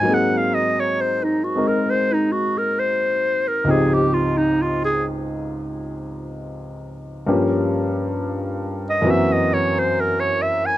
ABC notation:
X:1
M:4/4
L:1/16
Q:"Swing" 1/4=67
K:Ab
V:1 name="Clarinet"
_g f e d c E _G B c E G B c3 B | A G F E F A z8 z2 | z6 z e _f e d c B d f a |]
V:2 name="Grand piano"
[A,,_G,B,CA]6 [A,CEB]8- [A,CEB]2 | [D,,A,,F,CEG]16 | [G,,F,B,DG]8 [_G,,_F,B,C_G]8 |]